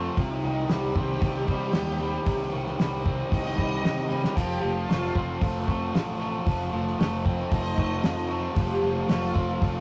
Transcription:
0.00 0.17 F3 medium
0.00 0.17 A3 medium
0.00 0.70 C4 medium
0.00 0.95 C4 medium
0.17 0.39 C2 medium
0.17 1.48 C3 medium
0.17 1.49 C3 medium
0.17 0.70 D#4 medium
0.17 kick loud
0.17 open hi-hat medium
0.44 0.65 C2 medium
0.44 1.19 D#3 medium
0.44 1.21 G3 medium
0.69 0.91 C2 medium
0.69 1.45 G3 medium
0.69 1.47 C4 medium
0.69 snare loud
0.69 open hi-hat medium
0.86 1.48 G4 loud
0.95 1.17 C2 medium
0.95 1.73 D#3 medium
0.95 3.04 C4 medium
0.95 kick medium
1.21 1.43 C2 medium
1.21 1.72 D#3 medium
1.21 2.52 G3 medium
1.21 kick loud
1.21 open hi-hat medium
1.47 1.69 C3 medium
1.47 1.98 G3 medium
1.47 2.00 C4 medium
1.47 2.51 G4 medium
1.47 kick medium
1.73 2.17 D#2 medium
1.73 2.51 D#3 medium
1.73 3.04 D#3 medium
1.73 snare loud
1.73 open hi-hat medium
2.00 2.77 G3 medium
2.00 2.79 C4 medium
2.26 2.48 C2 medium
2.26 3.57 C3 medium
2.26 3.58 C3 medium
2.26 kick loud
2.26 open hi-hat medium
2.52 2.75 C2 medium
2.52 3.29 D#3 medium
2.52 3.30 G3 medium
2.66 snare soft
2.78 3.23 C2 medium
2.78 3.56 G3 medium
2.78 3.57 C4 medium
2.78 snare loud
2.78 open hi-hat medium
3.05 3.84 D#3 medium
3.05 5.15 C4 medium
3.05 4.08 D#5 loud
3.05 kick medium
3.30 3.54 C2 medium
3.30 3.81 D#3 medium
3.30 4.36 G3 medium
3.30 kick loud
3.30 open hi-hat medium
3.57 3.80 C2 medium
3.57 4.08 G3 medium
3.57 4.10 C4 medium
3.57 kick medium
3.82 4.27 C3 medium
3.82 4.35 D#3 medium
3.82 4.36 D#3 medium
3.82 snare loud
3.82 open hi-hat medium
4.09 4.36 G3 medium
4.09 4.89 C4 medium
4.09 high tom medium
4.24 snare medium
4.36 4.58 F1 medium
4.36 4.61 F3 medium
4.36 5.15 F3 medium
4.36 kick loud
4.36 open hi-hat medium
4.36 crash loud
4.61 4.84 F1 medium
4.61 5.41 F3 medium
4.61 5.41 A3 medium
4.61 5.64 F4 loud
4.89 5.10 F1 medium
4.89 5.67 A3 medium
4.89 5.68 C4 medium
4.89 snare loud
4.89 open hi-hat medium
5.15 5.37 F1 medium
5.15 5.93 F3 medium
5.15 7.24 C4 medium
5.15 kick medium
5.41 5.63 F1 medium
5.41 5.93 F3 medium
5.41 6.73 A3 medium
5.41 kick loud
5.41 open hi-hat medium
5.67 5.89 F2 medium
5.67 6.19 A3 medium
5.67 6.19 C4 medium
5.67 kick medium
5.93 6.37 A1 medium
5.93 6.45 F3 medium
5.93 snare loud
5.93 open hi-hat medium
6.19 6.99 A3 medium
6.19 6.99 C4 medium
6.45 6.68 F1 medium
6.45 6.72 F3 medium
6.45 7.25 F3 medium
6.45 kick loud
6.45 open hi-hat medium
6.72 6.94 F1 medium
6.72 7.50 F3 medium
6.72 7.52 A3 medium
6.87 snare soft
6.99 7.42 F1 medium
6.99 7.77 A3 medium
6.99 7.78 C4 medium
6.99 snare loud
6.99 open hi-hat medium
7.25 8.04 F3 medium
7.25 9.34 C4 medium
7.25 8.28 D#5 loud
7.25 kick medium
7.51 7.73 F1 medium
7.51 8.03 F3 medium
7.51 8.82 A3 medium
7.51 kick loud
7.51 open hi-hat medium
7.77 7.99 F1 medium
7.77 8.29 A3 medium
7.77 8.30 C4 medium
7.77 kick medium
8.03 8.47 F2 medium
8.03 8.55 F3 medium
8.03 8.56 F3 medium
8.03 snare loud
8.03 open hi-hat medium
8.30 9.08 A3 medium
8.30 9.09 C4 medium
8.56 8.78 F1 loud
8.56 8.81 F3 medium
8.56 9.35 F3 medium
8.56 kick loud
8.56 open hi-hat medium
8.82 9.04 F1 medium
8.82 9.60 F3 medium
8.82 9.61 A3 medium
8.82 9.80 F4 loud
9.08 9.30 F1 loud
9.08 9.80 A3 medium
9.08 9.80 C4 medium
9.08 snare loud
9.08 open hi-hat medium
9.34 9.57 F1 medium
9.34 9.80 F3 medium
9.34 9.80 C4 medium
9.34 kick medium
9.60 9.80 F1 medium
9.60 9.80 F3 medium
9.60 9.80 A3 medium
9.60 kick loud
9.60 open hi-hat medium

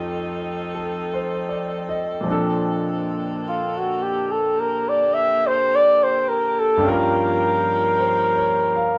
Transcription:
0.00 2.22 F2 medium
0.00 2.07 F3 medium
0.00 2.22 F3 soft
0.00 2.25 A3 soft
0.00 6.77 C4 medium
0.00 2.07 D#4 medium
0.00 2.26 D#4 soft
0.00 2.27 G4 medium
0.00 4.48 A4 medium
0.75 1.33 A4 soft
1.13 1.84 C5 soft
1.49 2.08 D5 soft
1.89 2.47 D#5 soft
2.21 6.80 A#2 medium
2.21 6.77 D3 medium
2.21 6.81 F3 medium
2.21 8.92 A#3 medium
2.27 6.83 C4 soft
2.27 6.84 D4 soft
2.32 6.85 A4 medium
3.49 3.79 F4 medium
3.78 4.04 F#4 medium
4.02 4.33 G4 medium
4.32 4.61 A4 medium
4.53 8.92 G4 medium
4.60 4.90 A#4 medium
4.89 5.16 D5 medium
5.14 5.49 E5 loud
5.47 5.77 C5 medium
5.76 6.05 D5 medium
6.04 6.30 C5 medium
6.29 6.61 A#4 medium
6.60 6.91 A4 medium
6.77 8.98 G2 medium
6.77 8.98 G3 medium
6.81 8.92 F3 medium
6.81 8.98 C#4 medium
6.86 8.98 F4 medium
6.86 8.98 A#4 medium
7.99 8.71 C5 soft
8.37 8.96 C#5 soft
8.75 8.98 F5 soft

